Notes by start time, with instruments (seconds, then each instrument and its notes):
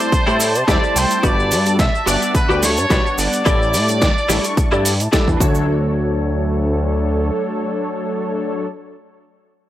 Already playing: analog polysynth G3 A3 C4 E4 D5, trumpet section C5, analog synth pad A5
0.00 closed hi-hat, cabasa
0.12 muted clean electric guitar stroke, kick, closed hi-hat, cabasa
0.27 analog synth bass A2, analog polysynth G3 A3 C4 E4 A4, clean electric guitar E4 G4 A4 C5, cabasa
0.40 clean electric guitar D5, open hi-hat, cabasa
0.55 analog synth bass C3, closed hi-hat, cabasa
0.67 analog synth bass E2, analog polysynth G3 A3 C4 E4 C5, clean electric guitar E4 G4 A4 C5 E5, trumpet section D5, kick, snare, closed hi-hat, cabasa
0.82 analog polysynth G3 A3 C4 E4 C5, cabasa
0.95 analog synth bass C2, trumpet section C5, clean electric guitar G5, muted clean electric guitar stroke, open hi-hat, cabasa
1.10 closed hi-hat, cabasa
1.23 analog synth bass G1, analog polysynth G3 B3 D4 F#4 B4, clean electric guitar F#4 G4 B4 D5, trumpet section D5, kick, closed hi-hat, cabasa
1.40 cabasa
1.51 analog synth bass G2, open hi-hat, cabasa
1.66 analog polysynth G3 B3 D4 F#4 A4, closed hi-hat, cabasa
1.79 analog synth bass B1, trumpet section E5, kick, snare, closed hi-hat, cabasa
1.95 cabasa
2.06 analog synth bass G1, analog polysynth G3 B3 D4 E5 F#5, clean electric guitar F#4 G4 B4 D5, trumpet section D5, open hi-hat, cabasa
2.22 closed hi-hat, cabasa
2.34 analog synth bass D2, trumpet section B4, muted clean electric guitar stroke, kick, closed hi-hat, cabasa
2.49 analog synth bass D2, analog polysynth G3 B3 D4 F#4 B4, clean electric guitar F#4 G4 B4 D5, cabasa
2.63 trumpet section C#5, snare, open hi-hat, cabasa
2.77 analog synth bass G2, closed hi-hat, cabasa
2.79 cabasa
2.90 analog synth bass B1, analog polysynth G3 B3 D4 F#4 D5, clean electric guitar F#4 G4 B4 D5, kick, snare, closed hi-hat, cabasa
3.05 analog polysynth G3 B3 D4 D5 F#5, cabasa
3.17 analog synth bass G1, trumpet section D5, muted clean electric guitar stroke, open hi-hat, cabasa
3.33 closed hi-hat, cabasa
3.35 cabasa
3.45 analog synth bass A1, analog polysynth G3 A3 D4 E4 A4, clean electric guitar E4 G4 A4 D5, kick, closed hi-hat, cabasa
3.62 cabasa
3.73 analog synth bass A2, open hi-hat, cabasa
3.88 analog polysynth G3 A3 D4 E4 G4, closed hi-hat, cabasa
4.02 analog synth bass D2, kick, snare, closed hi-hat, cabasa
4.18 cabasa
4.28 analog synth bass A1, analog polysynth G3 A3 D4 E4 C#6, clean electric guitar E4 G4 A4 D5, snare, open hi-hat, cabasa
4.44 closed hi-hat, cabasa
4.57 muted clean electric guitar stroke, kick, closed hi-hat, cabasa
4.71 analog synth bass G2, analog polysynth G3 A3 D4 E4 A4, clean electric guitar E4 G4 A4 D5, cabasa
4.85 open hi-hat, cabasa
5.00 analog synth bass A2, closed hi-hat, cabasa
5.12 analog polysynth G3 A3 D4 E4 A4, clean electric guitar E4 G4 A4 D5, kick, snare, closed hi-hat, cabasa
5.27 analog synth bass E2, analog polysynth G3 A3 D4 E4 B4, kick, cabasa
5.37 analog synth bass D2, analog polysynth F#3 A3 D4 C#5, clean electric guitar D4 F#4, kick, cabasa
5.42 analog polysynth A4, clean electric guitar C#5
5.55 cabasa